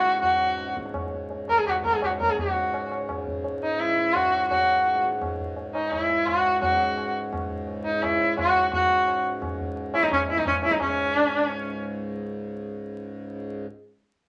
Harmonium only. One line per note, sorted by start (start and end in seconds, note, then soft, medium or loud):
0.00 2.36 C#2 medium
0.00 2.37 G#2 medium
2.38 6.61 C#2 medium
2.38 6.61 G#2 medium
6.62 10.79 C#2 medium
6.62 10.80 G#2 medium
10.81 13.66 C#2 medium
10.81 13.66 G#2 medium